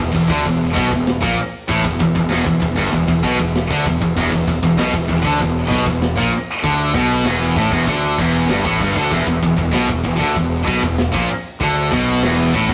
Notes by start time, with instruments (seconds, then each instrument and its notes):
Already playing: distorted electric guitar E2
0.00 fingered electric bass E1, distorted electric guitar E2
0.12 fingered electric bass E1, distorted electric guitar E2, kick, ride
0.17 distorted electric guitar E2
0.28 fingered electric bass D2, distorted electric guitar D3, kick
0.42 fingered electric bass E1, distorted electric guitar E2, kick, ride
0.46 distorted electric guitar E2
0.74 fingered electric bass B1, distorted electric guitar B2, kick, ride
0.89 fingered electric bass E1, distorted electric guitar E2, kick
0.94 distorted electric guitar E2
1.07 snare, ride
1.21 fingered electric bass A#1, distorted electric guitar A#2, kick
1.38 ride
1.68 fingered electric bass A1, distorted electric guitar A2, kick, ride
1.85 fingered electric bass E1, distorted electric guitar E2, kick
1.99 fingered electric bass E1, distorted electric guitar E2, kick, ride
2.15 fingered electric bass E1, distorted electric guitar E2, kick
2.29 fingered electric bass E1, distorted electric guitar E2, snare, ride
2.45 fingered electric bass E1, distorted electric guitar E2, kick
2.60 fingered electric bass E1, distorted electric guitar E2, kick, ride
2.76 fingered electric bass G1, distorted electric guitar G2, kick
2.91 fingered electric bass E1, distorted electric guitar E2, kick, ride
3.07 fingered electric bass E1, distorted electric guitar E2, kick
3.23 fingered electric bass B1, distorted electric guitar B2, kick, ride
3.39 fingered electric bass E1, distorted electric guitar E2, kick
3.55 snare, ride
3.71 fingered electric bass D2, distorted electric guitar D3, kick
3.86 fingered electric bass E1, distorted electric guitar E2, kick, ride
4.01 fingered electric bass E1, distorted electric guitar E2, kick
4.17 fingered electric bass E1, distorted electric guitar E2, kick, crash
4.32 fingered electric bass E1, distorted electric guitar E2, kick
4.47 fingered electric bass E1, distorted electric guitar E2, kick, ride
4.63 fingered electric bass E1, distorted electric guitar E2, kick
4.77 fingered electric bass B1, distorted electric guitar B2, snare, ride
4.93 fingered electric bass E1, distorted electric guitar E2, kick
5.08 fingered electric bass E1, distorted electric guitar E2, kick, ride
5.22 fingered electric bass D2, distorted electric guitar D3, kick
5.38 fingered electric bass E1, distorted electric guitar E2, kick, ride
5.68 fingered electric bass B1, distorted electric guitar B2, kick, ride
5.86 fingered electric bass E1, distorted electric guitar E2, kick
6.02 snare, ride
6.16 fingered electric bass A#1, distorted electric guitar A#2, kick
6.33 ride
6.63 fingered electric bass D2, distorted electric guitar D3, kick, ride
6.94 fingered electric bass B1, distorted electric guitar B2, kick, ride
7.24 fingered electric bass E1, distorted electric guitar E2, snare, ride
7.56 fingered electric bass A1, distorted electric guitar A2, kick, ride
7.71 fingered electric bass E1, distorted electric guitar E2, kick
7.87 fingered electric bass D2, distorted electric guitar D3, kick, ride
8.19 fingered electric bass E1, distorted electric guitar E2, kick, ride
8.49 fingered electric bass G1, distorted electric guitar G2, snare, ride
8.65 fingered electric bass A1, distorted electric guitar A2, kick
8.80 fingered electric bass G1, distorted electric guitar G2, kick, ride
8.96 fingered electric bass D2, distorted electric guitar D3, kick
9.11 fingered electric bass E1, distorted electric guitar E2, kick, ride
9.27 fingered electric bass E1, distorted electric guitar E2, kick
9.43 fingered electric bass E1, distorted electric guitar E2, kick, ride
9.57 fingered electric bass E1, distorted electric guitar E2, kick
9.71 fingered electric bass B1, distorted electric guitar B2, snare, ride
9.86 fingered electric bass E1, distorted electric guitar E2, kick
10.04 fingered electric bass E1, distorted electric guitar E2, kick, ride
10.17 fingered electric bass D2, distorted electric guitar D3, kick
10.22 distorted electric guitar D3
10.33 fingered electric bass E1, distorted electric guitar E2, kick, ride
10.65 fingered electric bass B1, distorted electric guitar B2, kick, ride
10.82 fingered electric bass E1, distorted electric guitar E2, kick
10.98 snare, ride
11.12 fingered electric bass A#1, distorted electric guitar A#2, kick
11.29 ride
11.60 fingered electric bass D2, distorted electric guitar D3, kick, ride
11.92 fingered electric bass B1, distorted electric guitar B2, kick, ride
12.22 fingered electric bass E1, distorted electric guitar E2, snare, ride
12.54 fingered electric bass A1, distorted electric guitar A2, kick, ride
12.69 fingered electric bass E1, distorted electric guitar E2, kick